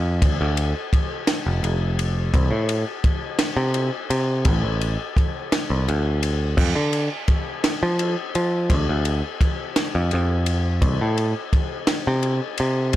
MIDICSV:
0, 0, Header, 1, 3, 480
1, 0, Start_track
1, 0, Tempo, 706714
1, 151, Time_signature, 6, 3, 24, 8
1, 8804, End_track
2, 0, Start_track
2, 0, Title_t, "Picked electric bass"
2, 0, Program_c, 0, 34
2, 0, Note_on_c, 0, 41, 91
2, 151, Note_off_c, 0, 41, 0
2, 151, Note_on_c, 0, 38, 110
2, 260, Note_off_c, 0, 38, 0
2, 277, Note_on_c, 0, 38, 86
2, 493, Note_off_c, 0, 38, 0
2, 995, Note_on_c, 0, 29, 86
2, 1102, Note_off_c, 0, 29, 0
2, 1107, Note_on_c, 0, 29, 84
2, 1562, Note_off_c, 0, 29, 0
2, 1589, Note_on_c, 0, 36, 99
2, 1699, Note_off_c, 0, 36, 0
2, 1703, Note_on_c, 0, 45, 88
2, 1925, Note_off_c, 0, 45, 0
2, 2422, Note_on_c, 0, 48, 105
2, 2644, Note_off_c, 0, 48, 0
2, 2786, Note_on_c, 0, 48, 89
2, 3024, Note_on_c, 0, 33, 108
2, 3034, Note_off_c, 0, 48, 0
2, 3137, Note_off_c, 0, 33, 0
2, 3146, Note_on_c, 0, 33, 80
2, 3366, Note_off_c, 0, 33, 0
2, 3873, Note_on_c, 0, 36, 87
2, 3982, Note_off_c, 0, 36, 0
2, 3997, Note_on_c, 0, 38, 85
2, 4447, Note_off_c, 0, 38, 0
2, 4464, Note_on_c, 0, 41, 105
2, 4576, Note_off_c, 0, 41, 0
2, 4588, Note_on_c, 0, 50, 87
2, 4807, Note_off_c, 0, 50, 0
2, 5316, Note_on_c, 0, 53, 104
2, 5532, Note_off_c, 0, 53, 0
2, 5674, Note_on_c, 0, 53, 90
2, 5910, Note_on_c, 0, 38, 102
2, 5920, Note_off_c, 0, 53, 0
2, 6019, Note_off_c, 0, 38, 0
2, 6040, Note_on_c, 0, 38, 87
2, 6254, Note_off_c, 0, 38, 0
2, 6758, Note_on_c, 0, 41, 93
2, 6864, Note_off_c, 0, 41, 0
2, 6882, Note_on_c, 0, 41, 82
2, 7330, Note_off_c, 0, 41, 0
2, 7346, Note_on_c, 0, 36, 101
2, 7458, Note_off_c, 0, 36, 0
2, 7480, Note_on_c, 0, 45, 90
2, 7695, Note_off_c, 0, 45, 0
2, 8200, Note_on_c, 0, 48, 101
2, 8416, Note_off_c, 0, 48, 0
2, 8557, Note_on_c, 0, 48, 89
2, 8800, Note_off_c, 0, 48, 0
2, 8804, End_track
3, 0, Start_track
3, 0, Title_t, "Drums"
3, 149, Note_on_c, 9, 36, 104
3, 149, Note_on_c, 9, 51, 108
3, 217, Note_off_c, 9, 36, 0
3, 217, Note_off_c, 9, 51, 0
3, 388, Note_on_c, 9, 51, 69
3, 456, Note_off_c, 9, 51, 0
3, 630, Note_on_c, 9, 36, 80
3, 633, Note_on_c, 9, 51, 76
3, 698, Note_off_c, 9, 36, 0
3, 701, Note_off_c, 9, 51, 0
3, 865, Note_on_c, 9, 38, 112
3, 865, Note_on_c, 9, 51, 104
3, 933, Note_off_c, 9, 38, 0
3, 933, Note_off_c, 9, 51, 0
3, 1112, Note_on_c, 9, 51, 80
3, 1179, Note_off_c, 9, 51, 0
3, 1351, Note_on_c, 9, 51, 79
3, 1419, Note_off_c, 9, 51, 0
3, 1587, Note_on_c, 9, 36, 112
3, 1589, Note_on_c, 9, 51, 98
3, 1655, Note_off_c, 9, 36, 0
3, 1656, Note_off_c, 9, 51, 0
3, 1826, Note_on_c, 9, 51, 74
3, 1893, Note_off_c, 9, 51, 0
3, 2064, Note_on_c, 9, 51, 78
3, 2065, Note_on_c, 9, 36, 82
3, 2132, Note_off_c, 9, 51, 0
3, 2133, Note_off_c, 9, 36, 0
3, 2300, Note_on_c, 9, 38, 109
3, 2300, Note_on_c, 9, 51, 103
3, 2368, Note_off_c, 9, 38, 0
3, 2368, Note_off_c, 9, 51, 0
3, 2540, Note_on_c, 9, 51, 80
3, 2608, Note_off_c, 9, 51, 0
3, 2787, Note_on_c, 9, 51, 72
3, 2855, Note_off_c, 9, 51, 0
3, 3021, Note_on_c, 9, 51, 101
3, 3025, Note_on_c, 9, 36, 99
3, 3089, Note_off_c, 9, 51, 0
3, 3093, Note_off_c, 9, 36, 0
3, 3269, Note_on_c, 9, 51, 64
3, 3337, Note_off_c, 9, 51, 0
3, 3509, Note_on_c, 9, 36, 80
3, 3515, Note_on_c, 9, 51, 72
3, 3577, Note_off_c, 9, 36, 0
3, 3583, Note_off_c, 9, 51, 0
3, 3751, Note_on_c, 9, 38, 123
3, 3751, Note_on_c, 9, 51, 98
3, 3819, Note_off_c, 9, 38, 0
3, 3819, Note_off_c, 9, 51, 0
3, 3996, Note_on_c, 9, 51, 71
3, 4064, Note_off_c, 9, 51, 0
3, 4229, Note_on_c, 9, 51, 78
3, 4297, Note_off_c, 9, 51, 0
3, 4466, Note_on_c, 9, 49, 99
3, 4468, Note_on_c, 9, 36, 111
3, 4534, Note_off_c, 9, 49, 0
3, 4535, Note_off_c, 9, 36, 0
3, 4705, Note_on_c, 9, 51, 70
3, 4773, Note_off_c, 9, 51, 0
3, 4943, Note_on_c, 9, 51, 77
3, 4946, Note_on_c, 9, 36, 78
3, 5011, Note_off_c, 9, 51, 0
3, 5014, Note_off_c, 9, 36, 0
3, 5188, Note_on_c, 9, 38, 119
3, 5188, Note_on_c, 9, 51, 101
3, 5256, Note_off_c, 9, 38, 0
3, 5256, Note_off_c, 9, 51, 0
3, 5428, Note_on_c, 9, 51, 85
3, 5496, Note_off_c, 9, 51, 0
3, 5671, Note_on_c, 9, 51, 73
3, 5739, Note_off_c, 9, 51, 0
3, 5907, Note_on_c, 9, 51, 106
3, 5908, Note_on_c, 9, 36, 110
3, 5975, Note_off_c, 9, 51, 0
3, 5976, Note_off_c, 9, 36, 0
3, 6147, Note_on_c, 9, 51, 73
3, 6215, Note_off_c, 9, 51, 0
3, 6389, Note_on_c, 9, 36, 82
3, 6390, Note_on_c, 9, 51, 81
3, 6457, Note_off_c, 9, 36, 0
3, 6458, Note_off_c, 9, 51, 0
3, 6629, Note_on_c, 9, 38, 117
3, 6629, Note_on_c, 9, 51, 99
3, 6697, Note_off_c, 9, 38, 0
3, 6697, Note_off_c, 9, 51, 0
3, 6867, Note_on_c, 9, 51, 73
3, 6935, Note_off_c, 9, 51, 0
3, 7106, Note_on_c, 9, 51, 76
3, 7174, Note_off_c, 9, 51, 0
3, 7348, Note_on_c, 9, 51, 104
3, 7349, Note_on_c, 9, 36, 115
3, 7416, Note_off_c, 9, 51, 0
3, 7417, Note_off_c, 9, 36, 0
3, 7590, Note_on_c, 9, 51, 64
3, 7658, Note_off_c, 9, 51, 0
3, 7829, Note_on_c, 9, 36, 77
3, 7829, Note_on_c, 9, 51, 70
3, 7897, Note_off_c, 9, 36, 0
3, 7897, Note_off_c, 9, 51, 0
3, 8063, Note_on_c, 9, 38, 121
3, 8063, Note_on_c, 9, 51, 100
3, 8131, Note_off_c, 9, 38, 0
3, 8131, Note_off_c, 9, 51, 0
3, 8304, Note_on_c, 9, 51, 72
3, 8372, Note_off_c, 9, 51, 0
3, 8541, Note_on_c, 9, 51, 71
3, 8609, Note_off_c, 9, 51, 0
3, 8783, Note_on_c, 9, 51, 98
3, 8804, Note_off_c, 9, 51, 0
3, 8804, End_track
0, 0, End_of_file